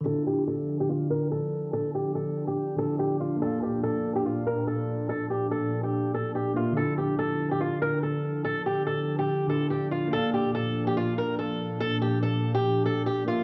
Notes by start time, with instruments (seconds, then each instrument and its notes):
0.01 tine electric piano D3 D4
0.06 ambient pad D3 F3 D4, tine electric piano E4, steel-string acoustic guitar A4
0.11 tine electric piano F4
0.27 steel-string acoustic guitar G4
0.47 steel-string acoustic guitar A4
0.80 steel-string acoustic guitar G4
0.89 steel-string acoustic guitar F4
1.10 steel-string acoustic guitar A#4
1.32 steel-string acoustic guitar A4
1.73 steel-string acoustic guitar A4
1.95 steel-string acoustic guitar G4
2.15 steel-string acoustic guitar A4
2.47 steel-string acoustic guitar G4
2.76 tine electric piano D3 D4 E4, steel-string acoustic guitar A4
2.81 tine electric piano F4
2.99 steel-string acoustic guitar G4
3.20 steel-string acoustic guitar F4
3.36 tine electric piano A#3 F4
3.41 ambient pad A#2 F3, steel-string acoustic guitar A4, tine electric piano D5
3.47 tine electric piano F5
3.62 steel-string acoustic guitar G4
3.83 steel-string acoustic guitar A4
4.16 steel-string acoustic guitar G4
4.25 steel-string acoustic guitar F4
4.47 steel-string acoustic guitar A#4
4.67 steel-string acoustic guitar A4
5.09 steel-string acoustic guitar A4
5.30 steel-string acoustic guitar G4
5.51 steel-string acoustic guitar A4
5.83 steel-string acoustic guitar G4
6.14 steel-string acoustic guitar A4
6.35 steel-string acoustic guitar G4
6.54 tine electric piano A#3 A#4 D5, steel-string acoustic guitar F4
6.59 tine electric piano E5
6.72 tine electric piano D3 D4
6.77 ambient pad D3 F3, tine electric piano E4, steel-string acoustic guitar A4
6.83 tine electric piano F4
6.98 steel-string acoustic guitar G4
7.19 steel-string acoustic guitar A4
7.51 steel-string acoustic guitar G4
7.61 steel-string acoustic guitar F4
7.82 steel-string acoustic guitar A#4
8.03 steel-string acoustic guitar A4
8.45 steel-string acoustic guitar A4
8.66 steel-string acoustic guitar G4
8.87 steel-string acoustic guitar A4
9.19 steel-string acoustic guitar G4
9.47 tine electric piano D3 D4 E4, steel-string acoustic guitar A4
9.52 tine electric piano F4
9.70 steel-string acoustic guitar G4
9.91 steel-string acoustic guitar F4
10.08 tine electric piano A#3 F4
10.13 ambient pad A#2 D4, steel-string acoustic guitar A4, tine electric piano D5
10.18 tine electric piano F5
10.34 steel-string acoustic guitar G4
10.55 steel-string acoustic guitar A4
10.87 steel-string acoustic guitar G4
10.97 steel-string acoustic guitar F4
11.18 steel-string acoustic guitar A#4
11.39 steel-string acoustic guitar A4
11.80 steel-string acoustic guitar A4
12.02 steel-string acoustic guitar G4
12.23 steel-string acoustic guitar A4
12.55 steel-string acoustic guitar G4
12.86 steel-string acoustic guitar A4
13.06 steel-string acoustic guitar G4
13.25 tine electric piano A#3 A#4 D5, steel-string acoustic guitar F4
13.30 tine electric piano E5